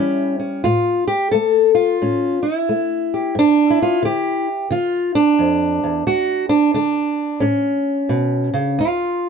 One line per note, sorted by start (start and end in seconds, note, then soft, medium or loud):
0.00 0.59 E3 medium
0.00 0.67 G3 soft
0.00 0.38 C#4 medium
0.00 0.40 E4 medium
0.39 0.61 C#4 soft
0.64 1.27 A2 medium
0.64 1.07 F4 medium
1.08 1.31 G4 medium
1.31 1.96 A3 medium
1.31 1.74 A4 medium
1.75 2.42 F4 medium
2.02 2.63 A2 medium
2.02 2.42 C#4 soft
2.43 3.35 E4 medium
2.69 3.31 A3 medium
3.14 3.34 G4 soft
3.35 3.98 G2 medium
3.35 3.80 D4 medium
3.70 4.47 E4 medium
3.82 4.05 F4 medium
4.02 4.66 D3 medium
4.02 4.71 G4 medium
4.71 5.34 D3 medium
4.71 5.15 F4 medium
5.15 6.06 D4 medium
5.39 5.82 F2 medium
5.84 6.06 E2 medium
6.07 6.70 D2 medium
6.07 6.49 F#4 loud
6.49 6.73 D4 medium
6.74 7.39 D3 medium
6.74 7.43 D4 medium
7.40 8.06 A2 medium
7.40 8.78 C#4 medium
8.09 8.53 B2 medium
8.54 8.79 C#3 medium
8.79 9.29 D2 medium
8.79 9.29 F4 medium